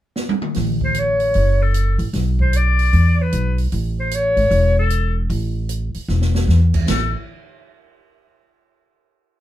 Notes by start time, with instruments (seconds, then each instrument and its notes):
0.16 snare
0.29 high tom
0.42 mid tom
0.54 upright bass A1, snare, open hi-hat
0.81 kick
0.85 clarinet C5
0.95 closed hi-hat
0.99 clarinet C#5
1.20 open hi-hat
1.34 upright bass F#1, open hi-hat
1.63 clarinet A4
1.74 closed hi-hat
1.98 upright bass A1, open hi-hat
2.13 upright bass B1, snare, open hi-hat
2.39 clarinet C5, kick
2.53 clarinet D5, closed hi-hat
2.79 open hi-hat
2.93 upright bass E2, open hi-hat
3.22 clarinet B4
3.32 upright bass B1, closed hi-hat
3.58 open hi-hat
3.72 upright bass A1, open hi-hat
4.00 clarinet C5
4.11 clarinet C#5, closed hi-hat
4.36 upright bass G#1, open hi-hat
4.51 upright bass E1, open hi-hat
4.79 clarinet A4
4.90 closed hi-hat
5.30 upright bass A1, open hi-hat
5.69 closed hi-hat
5.94 muted upright bass stroke, open hi-hat
6.08 upright bass E1, snare
6.21 snare
6.35 snare
6.48 upright bass E2, snare
6.74 kick, crash
6.88 upright bass A1, clarinet A4, snare, ride bell